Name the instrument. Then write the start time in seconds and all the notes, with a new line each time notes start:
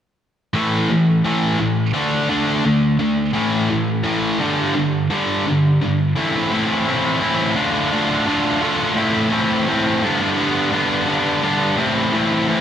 distorted electric guitar
0.54 A2 E3 A3
0.89 A2 E3
1.24 A2 E3 A3
1.59 A2 E3
1.93 D3 A3 D4
2.29 D3 A3 D4
2.65 D3 A3
2.99 D3 A3
3.33 A2 E3 A3
3.70 A2 E3
4.03 A2 E3 A3
4.39 G2 D3 G3
4.74 G2 D3
5.10 G2 D3 G3
5.47 G2 D3
5.81 G2 D3
6.16 A2 E3 A3 C4 E4
6.50 A2 E3 A3 C4 E4
6.86 A2 E3 A3 C4 E4
7.20 A2 E3 A3 C4 E4
7.56 D3 A3 D4 F4
7.92 D3 A3 D4 F4
8.26 D3 A3 D4 F4
8.62 D3 A3 D4 F4
8.96 A2 E3 A3 C4 E4
9.31 A2 E3 A3 C4 E4
9.69 A2 E3 A3 C4 E4
10.02 G2 D3 G3 B3 D4
10.38 G2 D3 G3 B3 D4
10.72 G2 D3 G3 B3 D4
11.08 G2 D3 G3 B3 D4
11.42 G2 D3 G3 B3 D4
11.77 A2 E3 A3 C4 E4
12.12 A2 E3 A3 C4 E4
12.48 A2 E3 A3 C4 E4